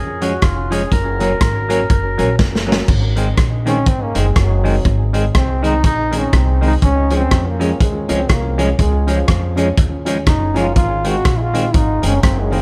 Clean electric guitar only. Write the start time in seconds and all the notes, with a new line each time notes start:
0.21 F3 G#3 C#4
0.71 F3 G#3 C#4
1.20 F#3 A#3 C#4
1.69 F#3 A#3 C#4
2.18 F#3 A#3 C#4
2.40 muted clean electric guitar stroke
2.67 F#3 A#3 C#4
3.16 D#3 G#3 C4
3.66 D#3 G#3 C4
4.15 D#3 G#3 C4
4.64 D#3 G#3 C4
5.13 D#3 G#3 C4
5.62 D#3 G#3 C4
6.11 D#3 G#3 C4
6.61 D#3 G#3 C4
7.10 F3 G#3 C#4
7.60 F3 G#3 C#4
8.09 F3 G#3 C#4
8.58 F3 G#3 C#4
9.07 F3 G#3 C#4
9.57 F3 G#3 C#4
10.06 F3 G#3 C#4
10.28 muted clean electric guitar stroke
10.56 F3 G#3 C#4
11.05 D#3 G#3 C4
11.54 D#3 G#3 C4
12.02 D#3 G#3 C4
12.52 D#3 G#3 C4